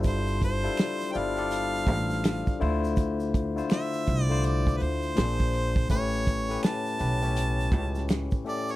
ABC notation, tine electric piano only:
X:1
M:4/4
L:1/16
Q:"Swing 16ths" 1/4=82
K:Am
V:1 name="Tine electric piano"
[G,DEFAc]2 z [G,DEFAc]2 z [G,DEFAd] [G,DFGAd]6 z [D,A,EFc]2- | [D,A,EFc]2 z [D,A,EFc]3 z [D,A,EFc]4- [D,A,EFc] [_B,,_B,CD_Ac]3 z | [A,,A,^CGB]2 z [A,,A,CGB]2 z [A,,A,CGB] [A,,A,CG^c]6 z [A,,A,CGA]2 |]